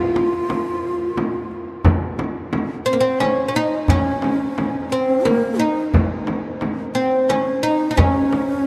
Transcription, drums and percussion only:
0, 0, Header, 1, 3, 480
1, 0, Start_track
1, 0, Tempo, 680272
1, 1306, Time_signature, 3, 2, 24, 8
1, 6117, End_track
2, 0, Start_track
2, 0, Title_t, "Frame drum"
2, 112, Note_on_c, 9, 64, 56
2, 183, Note_off_c, 9, 64, 0
2, 352, Note_on_c, 9, 64, 62
2, 422, Note_off_c, 9, 64, 0
2, 829, Note_on_c, 9, 64, 65
2, 899, Note_off_c, 9, 64, 0
2, 1305, Note_on_c, 9, 64, 90
2, 1375, Note_off_c, 9, 64, 0
2, 1545, Note_on_c, 9, 64, 65
2, 1615, Note_off_c, 9, 64, 0
2, 1783, Note_on_c, 9, 64, 67
2, 1854, Note_off_c, 9, 64, 0
2, 2273, Note_on_c, 9, 64, 66
2, 2344, Note_off_c, 9, 64, 0
2, 2748, Note_on_c, 9, 64, 82
2, 2818, Note_off_c, 9, 64, 0
2, 2993, Note_on_c, 9, 64, 61
2, 3064, Note_off_c, 9, 64, 0
2, 3235, Note_on_c, 9, 64, 63
2, 3305, Note_off_c, 9, 64, 0
2, 3708, Note_on_c, 9, 64, 66
2, 3778, Note_off_c, 9, 64, 0
2, 4193, Note_on_c, 9, 64, 85
2, 4264, Note_off_c, 9, 64, 0
2, 4431, Note_on_c, 9, 64, 57
2, 4502, Note_off_c, 9, 64, 0
2, 4672, Note_on_c, 9, 64, 61
2, 4742, Note_off_c, 9, 64, 0
2, 5156, Note_on_c, 9, 64, 61
2, 5227, Note_off_c, 9, 64, 0
2, 5630, Note_on_c, 9, 64, 87
2, 5701, Note_off_c, 9, 64, 0
2, 5875, Note_on_c, 9, 64, 57
2, 5945, Note_off_c, 9, 64, 0
2, 6117, End_track
3, 0, Start_track
3, 0, Title_t, "Tombak"
3, 114, Note_on_c, 9, 63, 73
3, 185, Note_off_c, 9, 63, 0
3, 353, Note_on_c, 9, 63, 69
3, 423, Note_off_c, 9, 63, 0
3, 831, Note_on_c, 9, 63, 67
3, 901, Note_off_c, 9, 63, 0
3, 1067, Note_on_c, 9, 62, 24
3, 1138, Note_off_c, 9, 62, 0
3, 1302, Note_on_c, 9, 64, 86
3, 1372, Note_off_c, 9, 64, 0
3, 1547, Note_on_c, 9, 63, 68
3, 1618, Note_off_c, 9, 63, 0
3, 1787, Note_on_c, 9, 63, 64
3, 1857, Note_off_c, 9, 63, 0
3, 2260, Note_on_c, 9, 63, 69
3, 2331, Note_off_c, 9, 63, 0
3, 2739, Note_on_c, 9, 64, 87
3, 2810, Note_off_c, 9, 64, 0
3, 2979, Note_on_c, 9, 63, 69
3, 3050, Note_off_c, 9, 63, 0
3, 3230, Note_on_c, 9, 63, 67
3, 3301, Note_off_c, 9, 63, 0
3, 3713, Note_on_c, 9, 63, 65
3, 3784, Note_off_c, 9, 63, 0
3, 4189, Note_on_c, 9, 64, 72
3, 4259, Note_off_c, 9, 64, 0
3, 4425, Note_on_c, 9, 63, 62
3, 4496, Note_off_c, 9, 63, 0
3, 4664, Note_on_c, 9, 63, 62
3, 4735, Note_off_c, 9, 63, 0
3, 5146, Note_on_c, 9, 63, 60
3, 5217, Note_off_c, 9, 63, 0
3, 5633, Note_on_c, 9, 64, 89
3, 5704, Note_off_c, 9, 64, 0
3, 5875, Note_on_c, 9, 63, 66
3, 5945, Note_off_c, 9, 63, 0
3, 6117, End_track
0, 0, End_of_file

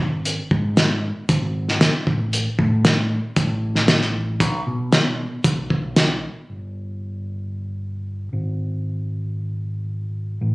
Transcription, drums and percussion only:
0, 0, Header, 1, 2, 480
1, 0, Start_track
1, 0, Tempo, 520833
1, 236, Time_signature, 4, 2, 24, 8
1, 9722, End_track
2, 0, Start_track
2, 0, Title_t, "Drums"
2, 234, Note_on_c, 9, 42, 60
2, 326, Note_off_c, 9, 42, 0
2, 471, Note_on_c, 9, 36, 75
2, 563, Note_off_c, 9, 36, 0
2, 710, Note_on_c, 9, 38, 116
2, 710, Note_on_c, 9, 42, 65
2, 803, Note_off_c, 9, 38, 0
2, 803, Note_off_c, 9, 42, 0
2, 1188, Note_on_c, 9, 42, 62
2, 1189, Note_on_c, 9, 36, 103
2, 1280, Note_off_c, 9, 42, 0
2, 1281, Note_off_c, 9, 36, 0
2, 1552, Note_on_c, 9, 38, 32
2, 1645, Note_off_c, 9, 38, 0
2, 1667, Note_on_c, 9, 38, 98
2, 1667, Note_on_c, 9, 42, 57
2, 1760, Note_off_c, 9, 38, 0
2, 1760, Note_off_c, 9, 42, 0
2, 1907, Note_on_c, 9, 36, 95
2, 1999, Note_off_c, 9, 36, 0
2, 2148, Note_on_c, 9, 42, 58
2, 2240, Note_off_c, 9, 42, 0
2, 2384, Note_on_c, 9, 36, 70
2, 2476, Note_off_c, 9, 36, 0
2, 2624, Note_on_c, 9, 38, 115
2, 2624, Note_on_c, 9, 42, 59
2, 2716, Note_off_c, 9, 38, 0
2, 2716, Note_off_c, 9, 42, 0
2, 3100, Note_on_c, 9, 42, 58
2, 3101, Note_on_c, 9, 36, 105
2, 3192, Note_off_c, 9, 42, 0
2, 3194, Note_off_c, 9, 36, 0
2, 3460, Note_on_c, 9, 38, 31
2, 3552, Note_off_c, 9, 38, 0
2, 3577, Note_on_c, 9, 38, 105
2, 3577, Note_on_c, 9, 42, 54
2, 3669, Note_off_c, 9, 38, 0
2, 3669, Note_off_c, 9, 42, 0
2, 3699, Note_on_c, 9, 38, 28
2, 3791, Note_off_c, 9, 38, 0
2, 4057, Note_on_c, 9, 36, 102
2, 4058, Note_on_c, 9, 42, 59
2, 4150, Note_off_c, 9, 36, 0
2, 4151, Note_off_c, 9, 42, 0
2, 4539, Note_on_c, 9, 38, 101
2, 4539, Note_on_c, 9, 42, 61
2, 4631, Note_off_c, 9, 38, 0
2, 4631, Note_off_c, 9, 42, 0
2, 5017, Note_on_c, 9, 36, 111
2, 5017, Note_on_c, 9, 42, 62
2, 5109, Note_off_c, 9, 36, 0
2, 5109, Note_off_c, 9, 42, 0
2, 5257, Note_on_c, 9, 36, 74
2, 5349, Note_off_c, 9, 36, 0
2, 5497, Note_on_c, 9, 38, 96
2, 5497, Note_on_c, 9, 42, 59
2, 5589, Note_off_c, 9, 38, 0
2, 5589, Note_off_c, 9, 42, 0
2, 9722, End_track
0, 0, End_of_file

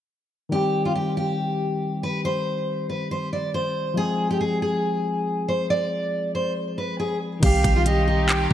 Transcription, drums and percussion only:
0, 0, Header, 1, 2, 480
1, 0, Start_track
1, 0, Key_signature, -3, "minor"
1, 0, Tempo, 431655
1, 579, Time_signature, 4, 2, 24, 8
1, 9488, End_track
2, 0, Start_track
2, 0, Title_t, "Drums"
2, 8259, Note_on_c, 9, 36, 119
2, 8259, Note_on_c, 9, 42, 77
2, 8259, Note_on_c, 9, 49, 100
2, 8370, Note_off_c, 9, 36, 0
2, 8370, Note_off_c, 9, 42, 0
2, 8370, Note_off_c, 9, 49, 0
2, 8498, Note_on_c, 9, 36, 102
2, 8500, Note_on_c, 9, 42, 86
2, 8610, Note_off_c, 9, 36, 0
2, 8611, Note_off_c, 9, 42, 0
2, 8738, Note_on_c, 9, 42, 86
2, 8849, Note_off_c, 9, 42, 0
2, 9219, Note_on_c, 9, 39, 117
2, 9220, Note_on_c, 9, 42, 86
2, 9330, Note_off_c, 9, 39, 0
2, 9331, Note_off_c, 9, 42, 0
2, 9488, End_track
0, 0, End_of_file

